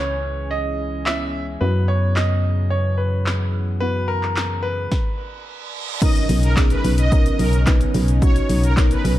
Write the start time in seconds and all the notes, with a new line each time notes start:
Already playing: C#2 C#3 E3 G#3 B3 C#4 E4 G#4 C#5
0.51 D#5
1.06 B3 C#4 E4 E5, snare, clap
1.61 F#2 F#3 B3 E4 F#4 B4
1.88 C#5
2.16 D#5, snare, clap
2.70 C#5
2.97 B4
3.26 snare, clap
3.80 B3 E4 F#4 B4
4.08 A#4
4.23 clap
4.36 snare, clap
4.63 B4
4.92 kick, snare, reverse cymbal
6.02 C#3 F#3 B3 C#4 D#4 A#4 D#5, kick, crash, impact, shaker
6.16 closed hi-hat, shaker
6.29 B1, open hi-hat, shaker
6.43 A#4, closed hi-hat, shaker
6.57 B3 C#4 D#4 G#4, kick, snare, clap, shaker
6.70 B4, closed hi-hat, shaker
6.84 B1, open hi-hat, shaker
6.98 D#5, closed hi-hat, shaker
7.12 B3 C#4 D#4 A#4, kick, shaker
7.26 closed hi-hat, shaker
7.39 B1 A#4, open hi-hat, shaker
7.53 closed hi-hat, shaker
7.67 B3 C#4 D#4 B4, kick, snare, clap, shaker
7.81 closed hi-hat, shaker
7.94 B1, open hi-hat, shaker
8.08 closed hi-hat, shaker
8.22 B3 C#4 D#4 F#4 C#5, kick, shaker
8.36 closed hi-hat, shaker
8.49 B1, open hi-hat, shaker
8.64 A#4, closed hi-hat, shaker
8.77 B3 C#4 D#4 A#4, kick, snare, clap, shaker
8.91 B4, closed hi-hat, shaker
9.05 B1, open hi-hat, shaker